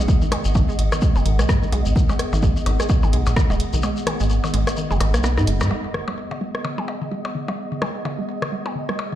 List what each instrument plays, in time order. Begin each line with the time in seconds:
Already playing: ambient pad B3 G#4 D#5 F#5, synth texture D#5
0.08 kick, shekere
0.22 synth arpeggio sound D#3, shekere
0.32 synth arpeggio sound G#3, cross-stick, closed hi-hat, percussion blips
0.45 analog synth bass G#1, shekere
0.55 synth arpeggio sound D#3, kick, percussion blips, shekere
0.69 synth arpeggio sound G#3, shekere
0.79 analog synth bass G#1, closed hi-hat
0.92 synth arpeggio sound D#3, cross-stick, closed hi-hat, percussion blips, shekere
1.01 synth arpeggio sound G#3, kick, shekere
1.16 analog synth bass F#1, percussion blips, shekere
1.26 analog synth bass G#1, synth arpeggio sound D#3, closed hi-hat
1.39 analog synth bass B1, synth arpeggio sound G#3, cross-stick, closed hi-hat, shekere
1.49 analog synth bass G#2, kick, cross-stick, percussion blips, shekere
1.62 synth arpeggio sound D#3, shekere
1.72 analog synth bass B1, synth arpeggio sound G#3, closed hi-hat, percussion blips
1.86 analog synth bass G#1, shekere
1.96 synth arpeggio sound D#3, kick, shekere
2.09 synth arpeggio sound G#3, percussion blips, shekere
2.19 cross-stick, closed hi-hat
2.33 analog synth bass G#1, synth arpeggio sound D#3, percussion blips, shekere
2.43 synth arpeggio sound G#3, kick, shekere
2.57 shekere
2.66 analog synth bass G#1, synth arpeggio sound D#3, closed hi-hat, percussion blips
2.80 synth arpeggio sound G#3, cross-stick, closed hi-hat, shekere
2.89 kick, percussion blips, shekere
3.03 analog synth bass G#1, synth arpeggio sound D#3, percussion blips, shekere
3.13 analog synth bass B1, synth arpeggio sound G#3, closed hi-hat
3.26 analog synth bass A#1, closed hi-hat, percussion blips, shekere
3.36 synth arpeggio sound D#3, kick, cross-stick, shekere
3.50 analog synth bass D#1, synth arpeggio sound G#3, percussion blips, shekere
3.60 closed hi-hat
3.73 analog synth bass B1, synth arpeggio sound D#3, shekere
3.83 synth arpeggio sound G#3, percussion blips, shekere
3.97 shekere
4.07 synth arpeggio sound D#3, cross-stick, closed hi-hat, percussion blips
4.20 analog synth bass G#1, synth arpeggio sound G#3, shekere
4.30 shekere
4.44 synth arpeggio sound D#3, percussion blips, shekere
4.54 analog synth bass G#1, synth arpeggio sound G#3, closed hi-hat
4.67 cross-stick, closed hi-hat, percussion blips, shekere
4.77 synth arpeggio sound D#3, shekere
4.91 analog synth bass F#1, synth arpeggio sound G#3, percussion blips, shekere
5.00 analog synth bass G#1, cross-stick, closed hi-hat, percussion blips
5.14 analog synth bass B1, synth arpeggio sound A#3, cross-stick, closed hi-hat, shekere
5.24 synth arpeggio sound B3, cross-stick, percussion blips, shekere
5.37 analog synth bass G#2, synth arpeggio sound D#4, cross-stick, shekere
5.47 analog synth bass F#1, synth arpeggio sound G#3, closed hi-hat
5.61 analog synth bass G#2, synth arpeggio sound G#3, cross-stick, percussion blips, shekere
5.71 synth arpeggio sound G#3, ambient pad B3, synth texture D#5, percussion blips
5.93 synth arpeggio sound D#3, ambient pad G#4, cross-stick
6.08 synth arpeggio sound G#3, percussion blips
6.16 ambient pad D#5
6.31 synth arpeggio sound D#3, percussion blips
6.41 synth arpeggio sound G#3, closed hi-hat
6.55 cross-stick
6.65 synth arpeggio sound D#3, percussion blips
6.78 synth arpeggio sound G#3, percussion blips
6.88 percussion blips
7.02 synth arpeggio sound D#3
7.11 synth arpeggio sound G#3
7.25 percussion blips
7.35 synth arpeggio sound D#3, closed hi-hat
7.48 synth arpeggio sound G#3, percussion blips
7.72 synth arpeggio sound D#3
7.82 synth arpeggio sound G#3, cross-stick, percussion blips
8.05 synth arpeggio sound D#3, percussion blips
8.19 synth arpeggio sound G#3
8.29 closed hi-hat
8.42 synth arpeggio sound D#3, cross-stick, percussion blips
8.52 synth arpeggio sound G#3
8.66 percussion blips
8.75 synth arpeggio sound D#3, closed hi-hat
8.89 synth arpeggio sound G#3, cross-stick
8.99 percussion blips